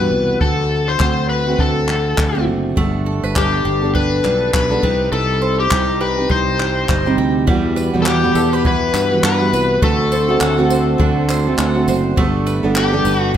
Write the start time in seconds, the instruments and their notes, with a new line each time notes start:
Already playing: electric slide guitar B4
0.00 steel-string acoustic guitar E2 B2 E3 G3 B3 F#4
0.12 fretless electric bass C2
0.40 fretless electric bass D2, steel-string acoustic guitar D3 A3 C4 F#4, electric slide guitar A4, kick
0.88 electric slide guitar C5
1.00 fretless electric bass D2, steel-string acoustic guitar D3 A3 C4 F#4, kick, clap
1.29 electric slide guitar B4
1.47 steel-string acoustic guitar A3 C4 F#4
1.59 fretless electric bass D2, electric slide guitar A4, kick
1.87 steel-string acoustic guitar D3 A3 C4 F#4, clap
2.18 fretless electric bass D2, kick, clap
2.35 steel-string acoustic guitar D3 A3 C4 F#4
2.47 fretless electric bass F#1
2.76 fretless electric bass G1, steel-string acoustic guitar G3 B3 D4 A4, mandolin A3, kick
3.06 mandolin A4
3.24 fretless electric bass G1, mandolin B4
3.35 steel-string acoustic guitar G3 B3 D4 A4, mandolin D4, electric slide guitar G4, kick, clap
3.65 fretless electric bass G1, mandolin G5
3.82 steel-string acoustic guitar B3 D4 A4
3.95 mandolin D4, electric slide guitar B4, kick
4.23 fretless electric bass B1, steel-string acoustic guitar G3 B3 D4 A4, mandolin B4, clap
4.54 fretless electric bass B1, mandolin D4, electric slide guitar B4, kick, clap
4.70 steel-string acoustic guitar G3 B3 D4 A4
4.82 fretless electric bass C2, steel-string acoustic guitar C3 G3 C4 D#4 G4, mandolin G3, kick
5.12 fretless electric bass C2, mandolin G3, electric slide guitar A4
5.42 mandolin C5
5.60 electric slide guitar G4
5.70 fretless electric bass C2, steel-string acoustic guitar C3 G3 C4 D#4 G4, mandolin D#4, kick, clap
6.01 electric slide guitar B4, mandolin G5
6.17 steel-string acoustic guitar C4 D#4 G4
6.30 fretless electric bass C2, mandolin D#4, electric slide guitar C5, kick
6.58 steel-string acoustic guitar G3 C4 D#4 G4, mandolin C5, clap
6.89 fretless electric bass G1, mandolin D#4, kick, clap
7.06 steel-string acoustic guitar C3 G3 C4 D#4 G4
7.18 fretless electric bass D2, mandolin G5
7.47 fretless electric bass E2, steel-string acoustic guitar E3 G3 B3 F#4, mandolin G3, kick
7.76 mandolin B4, tambourine
7.93 fretless electric bass E2, steel-string acoustic guitar E2 B2 E3 G3 B3 F#4
8.02 electric slide guitar A4, mandolin F#5, clap
8.08 electric slide guitar G4
8.24 steel-string acoustic guitar E2 B2 E3 G3 B3
8.35 fretless electric bass E2, mandolin A4, tambourine
8.53 mandolin B4
8.64 steel-string acoustic guitar E3 G3 B3 F#4, mandolin E4, electric slide guitar B4, kick
8.94 fretless electric bass G2, mandolin B4, clap, tambourine
9.11 steel-string acoustic guitar E3 G3 B3 F#4
9.23 fretless electric bass G2, electric slide guitar B4, mandolin F#5, clap
9.40 steel-string acoustic guitar E3 G3 B3 F#4
9.53 fretless electric bass C2, mandolin B4, tambourine
9.81 fretless electric bass D2, steel-string acoustic guitar D3 A3 C4 F#4, mandolin A3, electric slide guitar A4, kick
10.12 mandolin C5, tambourine
10.29 steel-string acoustic guitar D3 A3 C4 F#4
10.41 fretless electric bass D2, mandolin F#5, clap
10.58 steel-string acoustic guitar D3 A3 C4 F#4
10.70 mandolin C5, tambourine
10.98 fretless electric bass D2, steel-string acoustic guitar D3 A3 C4 F#4, mandolin D4, kick
11.29 mandolin C5, clap, tambourine
11.46 steel-string acoustic guitar A3 C4 F#4
11.58 fretless electric bass D2, mandolin F#5, clap
11.75 steel-string acoustic guitar A3 C4 F#4
11.88 fretless electric bass F#1, mandolin C5, tambourine
12.16 fretless electric bass G1, steel-string acoustic guitar G3 B3 D4 A4, mandolin A3, kick
12.47 mandolin B4, tambourine
12.63 fretless electric bass G1, steel-string acoustic guitar G3 B3 D4 A4
12.76 electric slide guitar G4, mandolin G5, clap
12.92 steel-string acoustic guitar G3 B3 D4 A4
13.05 fretless electric bass G1, mandolin B4, tambourine
13.17 electric slide guitar F#4
13.33 steel-string acoustic guitar G3 B3